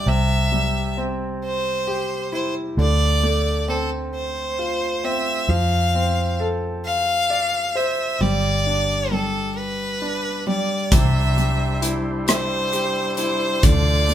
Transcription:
0.06 2.74 C2 medium
0.06 2.74 C3 medium
0.06 0.98 E5 medium
0.52 2.29 G3 soft
0.97 2.74 C4 soft
1.44 2.30 C5 medium
1.87 2.75 G4 soft
2.32 2.76 E4 soft
2.32 2.54 C5 medium
2.77 5.45 D2 medium
2.77 5.45 D3 medium
2.77 3.65 D5 medium
3.23 5.00 A3 soft
3.68 5.03 C4 soft
3.68 3.89 A4 medium
4.15 5.06 C5 medium
4.59 5.46 F4 soft
5.04 5.48 C4 soft
5.04 5.51 E5 medium
5.49 8.16 F2 loud
5.49 8.16 F3 medium
5.49 6.40 F5 medium
5.95 7.71 C4 soft
6.40 8.17 A4 soft
6.86 7.78 F5 loud
7.30 8.18 D5 soft
7.75 8.19 C5 soft
7.75 8.23 E5 medium
8.21 10.88 G1 loud
8.21 9.10 G3 medium
8.21 9.13 D5 medium
8.67 10.00 D4 soft
9.11 10.45 G3 soft
9.11 9.59 A4 medium
9.57 10.47 B4 medium
10.02 10.89 D4 soft
10.47 10.91 G3 soft
10.47 10.95 D5 medium
10.92 13.59 C2 medium
10.92 13.59 C3 medium
10.92 13.61 G3 medium
10.92 14.14 D4 soft
10.92 13.60 E4 medium
10.92 14.14 C5 medium
10.92 11.83 E5 medium
10.92 kick loud
10.92 closed hi-hat medium
11.37 13.14 G3 soft
11.37 closed hi-hat soft
11.82 13.17 E4 soft
11.82 closed hi-hat medium
12.28 13.14 C5 medium
12.28 cross-stick medium
12.28 closed hi-hat medium
12.72 13.60 G4 soft
12.72 closed hi-hat soft
13.17 13.62 E4 soft
13.17 13.65 C5 medium
13.17 closed hi-hat medium
13.63 14.14 D2 loud
13.63 14.14 D3 medium
13.63 14.14 A3 medium
13.63 14.14 F4 medium
13.63 14.14 D5 loud
13.63 kick medium
13.63 closed hi-hat medium
14.09 14.14 A3 soft
14.09 closed hi-hat soft

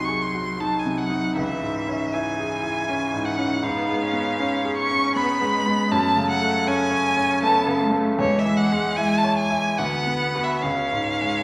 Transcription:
0.00 1.33 C2 soft
0.00 0.86 C3 soft
0.00 1.34 F#3 soft
0.00 0.61 D#4 soft
0.00 0.25 F#4 soft
0.05 0.50 G#4 soft
0.05 0.24 C#6 medium
0.22 0.62 C6 medium
0.35 0.76 F#4 soft
0.60 1.02 D#4 soft
0.60 0.81 A5 medium
0.79 0.99 G#5 medium
0.86 1.27 C3 soft
0.98 1.36 F#5 medium
1.10 1.37 D#4 soft
1.36 3.60 C#2 soft
1.36 2.13 E3 soft
1.36 2.15 E5 medium
1.63 2.04 G#2 soft
1.88 2.29 C#4 soft
2.13 3.61 E3 soft
2.13 2.54 E4 soft
2.13 3.27 G#5 medium
2.39 2.79 G#4 soft
2.63 3.04 E4 soft
2.89 3.29 C#4 soft
3.14 3.54 G#2 soft
3.25 3.65 F#5 medium
3.38 3.64 C#4 soft
3.62 5.87 G#2 medium
3.62 4.04 B3 medium
3.62 4.77 F5 medium
3.89 4.30 G#3 soft
4.03 4.40 C#4 medium
4.13 4.55 B3 soft
4.40 4.81 C#4 soft
4.40 5.17 C#4 medium
4.65 5.06 G#4 soft
4.77 5.15 C#6 medium
4.91 5.31 C#4 soft
5.16 5.57 B3 medium
5.16 5.56 B3 medium
5.16 5.93 B5 medium
5.41 5.82 G#3 soft
5.55 5.93 G#3 medium
5.66 5.92 B3 soft
5.91 8.16 F#2 medium
5.91 6.68 A3 medium
5.91 6.29 A5 medium
6.16 6.58 C#3 soft
6.30 6.70 F#5 medium
6.42 6.83 A3 soft
6.67 7.45 C#4 medium
6.67 7.08 C#4 soft
6.67 7.42 G#5 medium
6.91 7.32 C#5 soft
7.17 7.58 C#4 soft
7.42 7.83 A3 medium
7.42 7.82 B3 medium
7.42 7.80 A5 medium
7.67 8.09 C#3 medium
7.81 8.19 A3 medium
7.92 8.19 A3 soft
8.19 9.75 E2 medium
8.19 8.97 G#3 medium
8.19 8.40 C#5 medium
8.39 8.59 E5 medium
8.45 8.88 E3 soft
8.57 8.98 F#5 medium
8.72 9.15 G#3 medium
8.97 9.82 G#3 medium
8.97 9.41 E4 medium
8.97 9.19 G#5 medium
9.18 9.37 A5 medium
9.24 9.68 C#5 soft
9.37 9.80 G#5 medium
9.50 9.79 E4 soft
9.78 10.61 D2 medium
9.78 10.63 B3 medium
9.78 10.45 F#5 medium
10.07 10.52 B3 soft
10.35 10.61 F#4 soft
10.35 10.61 B4 soft
10.43 10.64 E5 medium
10.62 11.43 C#2 soft
10.62 11.43 C#4 medium
10.62 11.43 F5 medium
10.93 11.39 G#2 soft
11.21 11.43 G#3 soft

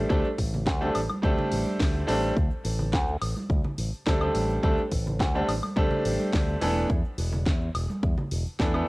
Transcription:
0.00 sub drop medium
0.09 0.21 D2 medium
0.09 0.25 G3 medium
0.09 0.26 A3 medium
0.09 0.26 C4 medium
0.09 0.26 D4 medium
0.09 0.26 A4 loud
0.09 kick loud
0.09 cabasa medium
0.25 cabasa soft
0.38 0.67 A1 medium
0.38 kick medium
0.38 open hi-hat loud
0.54 low conga loud
0.54 cabasa medium
0.67 0.89 D2 medium
0.67 kick loud
0.67 snare loud
0.67 cabasa medium
0.81 0.96 G3 medium
0.81 0.96 A3 medium
0.81 0.96 C4 medium
0.81 0.96 D4 medium
0.81 0.96 A4 loud
0.81 cabasa soft
0.95 1.07 A1 medium
0.95 open hi-hat loud
0.95 high woodblock medium
1.09 high conga loud
1.09 cabasa medium
1.09 high woodblock medium
1.22 1.35 D2 loud
1.22 2.04 G3 loud
1.22 2.05 A3 medium
1.22 2.05 C4 medium
1.22 2.05 D4 medium
1.22 2.05 A4 loud
1.22 kick loud
1.22 cabasa medium
1.38 low conga medium
1.38 cabasa soft
1.52 1.63 A1 medium
1.52 open hi-hat loud
1.66 high conga medium
1.66 cabasa medium
1.80 2.02 D2 medium
1.80 kick loud
1.80 snare loud
1.80 open hi-hat medium
1.80 cabasa medium
1.94 cabasa soft
2.07 2.30 A1 medium
2.07 2.32 G3 loud
2.07 2.32 A3 medium
2.07 2.32 C4 medium
2.07 2.33 D4 medium
2.07 2.33 A4 loud
2.07 open hi-hat loud
2.23 cabasa medium
2.37 2.48 D2 loud
2.37 kick loud
2.37 cabasa medium
2.51 cabasa soft
2.65 2.93 A1 medium
2.65 open hi-hat loud
2.79 low conga medium
2.79 cabasa medium
2.93 3.15 D2 medium
2.93 kick loud
2.93 snare loud
2.93 cabasa medium
3.07 cabasa soft
3.22 3.33 A1 medium
3.22 open hi-hat loud
3.22 high woodblock medium
3.36 high conga medium
3.36 cabasa medium
3.50 3.61 D2 loud
3.50 kick loud
3.50 cabasa medium
3.64 low conga medium
3.64 cabasa soft
3.78 3.89 A1 medium
3.78 open hi-hat loud
3.93 cabasa medium
4.06 4.29 D2 medium
4.06 4.17 G3 medium
4.06 4.17 A3 medium
4.06 4.18 C4 medium
4.06 4.18 D4 medium
4.06 4.18 A4 loud
4.06 kick loud
4.06 snare loud
4.06 cabasa medium
4.20 4.59 G3 medium
4.20 4.60 A3 medium
4.20 4.60 C4 medium
4.20 4.60 D4 medium
4.20 4.60 A4 medium
4.20 cabasa soft
4.20 high woodblock medium
4.35 4.57 A1 medium
4.35 open hi-hat loud
4.35 high conga medium
4.50 cabasa medium
4.63 4.75 D2 loud
4.63 4.79 G3 loud
4.63 4.79 A3 medium
4.63 4.79 C4 medium
4.63 4.79 D4 medium
4.63 4.79 A4 loud
4.63 kick loud
4.63 cabasa medium
4.78 cabasa soft
4.91 5.20 A1 medium
4.91 kick medium
4.91 open hi-hat loud
5.07 low conga medium
5.07 cabasa medium
5.20 5.42 D2 medium
5.20 kick loud
5.20 snare loud
5.20 cabasa medium
5.34 5.49 G3 medium
5.34 5.49 A3 medium
5.34 5.50 C4 medium
5.34 5.50 D4 medium
5.34 5.50 A4 medium
5.34 cabasa soft
5.48 5.59 A1 medium
5.48 open hi-hat loud
5.48 high woodblock medium
5.63 high conga loud
5.63 cabasa medium
5.63 high woodblock medium
5.76 5.88 D2 loud
5.76 6.58 G3 loud
5.76 6.58 A3 medium
5.76 6.58 C4 medium
5.76 6.58 D4 medium
5.76 6.59 A4 loud
5.76 kick loud
5.76 cabasa medium
5.91 low conga medium
5.91 cabasa soft
6.05 6.16 A1 medium
6.05 open hi-hat loud
6.20 high conga medium
6.20 cabasa medium
6.33 6.55 D2 medium
6.33 kick loud
6.33 snare loud
6.33 open hi-hat medium
6.33 cabasa medium
6.49 cabasa soft
6.61 6.84 E1 medium
6.61 6.86 E3 loud
6.61 6.86 A3 medium
6.61 6.86 B3 medium
6.61 6.86 D4 medium
6.61 6.86 A4 loud
6.61 open hi-hat loud
6.61 high conga medium
6.77 cabasa medium
6.90 7.01 E2 loud
6.90 kick loud
6.90 cabasa medium
7.04 cabasa soft
7.18 7.48 E1 medium
7.18 open hi-hat loud
7.32 low conga medium
7.32 cabasa medium
7.46 7.68 E2 medium
7.46 kick loud
7.46 snare loud
7.46 cabasa medium
7.61 cabasa soft
7.74 7.86 E1 medium
7.74 open hi-hat loud
7.74 high woodblock medium
7.90 high conga medium
7.90 cabasa medium
8.03 8.14 E2 loud
8.03 kick loud
8.03 cabasa medium
8.18 low conga medium
8.18 cabasa soft
8.31 8.43 E1 medium
8.31 open hi-hat loud
8.46 muted fingered electric bass stroke soft
8.46 cabasa medium
8.59 8.82 E2 medium
8.59 8.70 E3 medium
8.59 8.70 A3 medium
8.59 8.70 B3 medium
8.59 8.71 D4 medium
8.59 8.71 A4 medium
8.59 kick loud
8.59 snare loud
8.59 cabasa medium
8.74 8.88 E3 medium
8.74 8.88 A3 medium
8.74 8.88 B3 medium
8.74 8.88 D4 medium
8.74 8.88 A4 medium
8.74 cabasa soft
8.74 high woodblock medium

